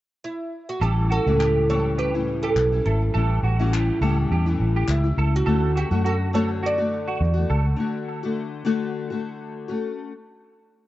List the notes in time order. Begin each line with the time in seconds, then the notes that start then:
0.24 E4
0.69 F#4
0.81 A1 E3 G3 C#4 E4 G4 A4
1.10 F#4 A4
1.26 C#2 A2 E3 G3 C#4 E4
1.39 G4, clap
1.69 A2 E3 G3 C#4 E4 A4 C#5
1.98 G4 B4
2.14 A2 E3 G3 C#4 E4
2.43 G4 A4
2.56 B1, clap
2.72 G3 C#4 E4
2.86 G#1 E4 A4
3.14 A1 E3 G3 C#4 E4 A4
3.43 A1 F#4
3.59 A2 E3 G3 C#4 E4
3.73 G4, clap
4.01 C#2 A2 E3 G3 C#4 E4 A4
4.31 E2 G4
4.46 A2 E3 G3 C#4 E4
4.60 A1
4.76 G4
4.88 C#2 E4, clap
5.04 G3 C#4 E4
5.17 C#2 A4
5.36 F#4
5.46 D2 D3 A3 C#4 F#4 A4
5.76 F#4 G4
5.91 F#2 D3 A3 C#4 F#4
6.04 F#4 A4
6.33 D3 A3 C#4 F#4 A4 C#5
6.63 F#4 D5
6.78 D3 A3 F#4
7.08 F#4
7.21 E2
7.34 A3 F#4
7.50 C#2 A4
7.76 D3 A3 F#4
8.23 D3 A3 F#4
8.65 D3 A3 F#4
9.10 D3 A3 F#4
9.68 A3 C#4 F#4